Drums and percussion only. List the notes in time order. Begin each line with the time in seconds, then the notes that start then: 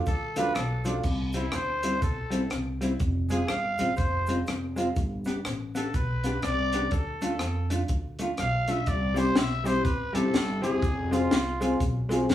0.06 kick, closed hi-hat, cabasa
0.36 closed hi-hat, cabasa
0.55 cross-stick, closed hi-hat, cabasa
0.85 closed hi-hat, cabasa
1.03 kick, crash, cabasa
1.33 closed hi-hat, cabasa
1.52 cross-stick, closed hi-hat, cabasa
1.83 closed hi-hat, cabasa
2.02 kick, closed hi-hat, cabasa
2.31 closed hi-hat, cabasa
2.50 cross-stick, closed hi-hat, cabasa
2.81 closed hi-hat, cabasa
2.99 kick, closed hi-hat, cabasa
3.29 closed hi-hat, cabasa
3.48 cross-stick, closed hi-hat, cabasa
3.78 closed hi-hat, cabasa
3.96 kick, closed hi-hat, cabasa
4.27 closed hi-hat, cabasa
4.46 cross-stick, closed hi-hat, cabasa
4.76 closed hi-hat, cabasa
4.96 kick, closed hi-hat, cabasa
5.25 closed hi-hat, cabasa
5.45 cross-stick, closed hi-hat, cabasa
5.75 closed hi-hat, cabasa
5.94 kick, closed hi-hat, cabasa
6.24 closed hi-hat, cabasa
6.42 cross-stick, closed hi-hat, cabasa
6.73 closed hi-hat, cabasa
6.91 kick, closed hi-hat, cabasa
7.21 closed hi-hat, cabasa
7.39 cross-stick, closed hi-hat, cabasa
7.70 closed hi-hat, cabasa
7.88 kick, closed hi-hat, cabasa
8.19 closed hi-hat, cabasa
8.37 cross-stick, closed hi-hat, cabasa
8.68 closed hi-hat, cabasa
8.86 kick, closed hi-hat, cabasa
9.16 closed hi-hat, cabasa
9.36 snare, closed hi-hat, cabasa
9.65 closed hi-hat, cabasa
9.85 kick, closed hi-hat, cabasa
10.15 closed hi-hat, cabasa
10.34 snare, closed hi-hat, cabasa
10.63 closed hi-hat, cabasa
10.82 kick, closed hi-hat, cabasa
11.13 closed hi-hat, cabasa
11.31 snare, closed hi-hat, cabasa
11.61 closed hi-hat, cabasa
11.80 kick, closed hi-hat, cabasa
12.11 closed hi-hat, cabasa
12.29 snare, closed hi-hat, cabasa